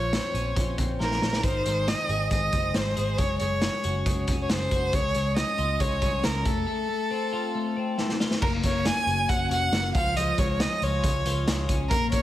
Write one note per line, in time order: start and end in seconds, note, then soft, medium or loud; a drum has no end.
0.00 0.18 A#1 medium
0.00 0.55 F3 medium
0.00 0.74 C#5 medium
0.13 0.78 C4 medium
0.13 snare loud
0.13 closed hi-hat medium
0.34 0.52 A#1 medium
0.34 1.21 C#4 medium
0.34 closed hi-hat medium
0.56 0.74 A#1 medium
0.56 0.99 F3 medium
0.56 kick medium
0.56 closed hi-hat medium
0.78 0.96 A#1 medium
0.78 1.48 C4 medium
0.78 kick medium
0.78 closed hi-hat medium
1.00 1.18 A#1 medium
1.00 1.44 F3 medium
1.00 1.46 A#4 medium
1.00 snare soft
1.11 snare soft
1.22 1.40 A#1 medium
1.22 1.48 C#4 medium
1.22 snare medium
1.33 snare medium
1.43 1.61 G#1 medium
1.43 3.19 D#3 medium
1.43 1.90 C5 medium
1.43 kick medium
1.43 closed hi-hat medium
1.66 1.92 G#1 medium
1.66 2.31 G#3 medium
1.66 closed hi-hat medium
1.87 2.52 C4 medium
1.87 2.31 D#5 medium
1.87 snare loud
1.87 closed hi-hat medium
2.09 2.27 G#1 medium
2.09 2.96 G#4 medium
2.09 closed hi-hat medium
2.31 2.49 G#1 medium
2.31 2.74 G#3 medium
2.31 2.77 D#5 medium
2.31 kick medium
2.31 closed hi-hat medium
2.52 2.71 F#1 medium
2.52 3.23 C4 medium
2.52 kick medium
2.52 closed hi-hat medium
2.74 2.92 G#1 medium
2.74 3.19 G#3 medium
2.74 3.19 C5 medium
2.74 snare loud
2.74 closed hi-hat medium
2.97 3.15 G#1 medium
2.97 3.84 G#4 medium
2.97 closed hi-hat medium
3.18 3.36 F#1 medium
3.18 3.41 G#3 medium
3.18 3.39 C#5 medium
3.18 kick medium
3.18 closed hi-hat medium
3.39 3.67 F#1 medium
3.39 4.06 G#3 medium
3.39 4.23 C#5 medium
3.39 closed hi-hat medium
3.62 4.28 C#4 soft
3.62 snare medium
3.62 closed hi-hat medium
3.84 4.02 F#1 medium
3.84 4.70 F#4 medium
3.84 closed hi-hat medium
4.06 4.24 F#1 medium
4.06 4.48 G#3 medium
4.06 kick medium
4.06 closed hi-hat medium
4.27 4.45 F1 medium
4.27 4.97 C#4 medium
4.27 kick medium
4.27 closed hi-hat medium
4.42 4.52 C#5 medium
4.49 4.67 F#1 medium
4.49 4.92 G#3 medium
4.49 4.96 C5 medium
4.49 snare loud
4.49 closed hi-hat medium
4.71 4.89 F#1 medium
4.71 4.97 F#4 medium
4.71 kick medium
4.71 closed hi-hat medium
4.93 5.11 C#2 medium
4.93 5.14 G#3 medium
4.93 5.36 C#5 loud
4.93 kick loud
4.93 closed hi-hat medium
5.14 5.42 C#2 medium
5.14 5.79 G#3 soft
5.14 closed hi-hat medium
5.37 6.00 C#4 medium
5.37 5.81 D#5 medium
5.37 snare loud
5.37 closed hi-hat medium
5.58 5.76 C#2 medium
5.58 6.50 F4 medium
5.58 closed hi-hat medium
5.80 5.98 C#2 medium
5.80 6.22 G#3 medium
5.80 6.26 C#5 medium
5.80 kick medium
5.80 closed hi-hat medium
6.02 6.20 C2 medium
6.02 6.50 C#4 medium
6.02 kick medium
6.02 closed hi-hat medium
6.23 6.42 C#2 medium
6.23 6.45 G#3 medium
6.23 6.47 A#4 medium
6.23 snare loud
6.23 closed hi-hat medium
6.45 6.64 F1 medium
6.45 6.65 A3 medium
6.45 7.98 A4 medium
6.45 kick medium
6.45 closed hi-hat medium
6.67 6.88 A3 medium
6.89 7.54 A3 soft
7.11 7.75 C4 medium
7.33 8.19 F4 medium
7.55 7.97 A3 medium
7.77 8.46 C4 medium
7.98 8.41 A3 medium
7.98 snare soft
8.09 snare soft
8.20 8.47 F4 medium
8.20 snare medium
8.31 snare medium
8.42 8.60 F#1 medium
8.42 8.62 A#3 medium
8.42 8.52 A#4 medium
8.42 kick medium
8.42 crash medium
8.63 8.91 F#1 medium
8.63 9.72 A#3 medium
8.63 8.88 C#5 medium
8.63 kick medium
8.63 closed hi-hat medium
8.85 9.29 C#4 medium
8.85 9.30 G#5 loud
8.85 snare loud
8.85 closed hi-hat medium
9.07 9.25 F#1 medium
9.07 9.50 F#4 medium
9.07 closed hi-hat medium
9.29 9.47 F#1 medium
9.29 10.60 C#4 medium
9.29 9.51 F#5 medium
9.29 kick medium
9.29 closed hi-hat medium
9.50 9.68 F1 medium
9.50 9.99 F#4 medium
9.50 9.92 F#5 loud
9.50 closed hi-hat medium
9.72 9.90 F#1 medium
9.72 9.99 A#3 medium
9.72 snare loud
9.72 closed hi-hat medium
9.95 10.31 C#2 medium
9.95 10.16 F3 medium
9.95 10.18 F5 loud
9.95 kick medium
9.95 closed hi-hat medium
10.16 12.22 F3 medium
10.16 10.40 D#5 loud
10.16 closed hi-hat medium
10.38 10.65 C#2 medium
10.38 11.47 G#3 medium
10.38 10.62 C#5 medium
10.38 kick medium
10.38 closed hi-hat medium
10.60 11.04 C#4 medium
10.60 10.84 D#5 medium
10.60 snare loud
10.60 closed hi-hat medium
10.82 11.00 C#2 medium
10.82 11.26 F4 medium
10.82 11.69 C#5 medium
10.82 closed hi-hat medium
11.04 11.21 C#2 medium
11.04 11.69 C#4 medium
11.04 kick medium
11.04 closed hi-hat medium
11.26 11.43 C#2 medium
11.26 12.22 F4 medium
11.26 closed hi-hat medium
11.47 11.65 C#2 medium
11.47 11.90 G#3 medium
11.47 snare loud
11.47 closed hi-hat medium
11.69 11.87 C#2 medium
11.69 11.96 C#4 medium
11.69 kick medium
11.69 closed hi-hat medium
11.90 12.09 A#1 medium
11.90 12.11 A#3 medium
11.90 12.10 A#4 loud
11.90 kick loud
11.90 closed hi-hat medium
12.12 12.22 A#1 medium
12.12 12.22 A#3 medium
12.12 12.22 C#5 loud
12.12 kick medium
12.12 closed hi-hat medium